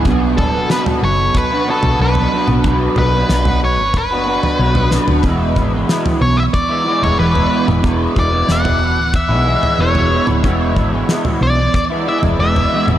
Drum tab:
SD |----o-----------|----o---------o-|----o-----------|----o-----------|
T2 |---------------o|----------------|---------------o|---------------o|
FT |o-o--o--o--o-o--|o-o--o--o--o-o-o|o-o--o--o--o-o--|o-o--o--o--o-o--|
BD |o-o-----o-------|o-------o-------|o-o-----o-------|o-o-----o-------|

SD |----o-----------|
T2 |---------------o|
FT |o-o--o--o--o-o--|
BD |o-o-----o-------|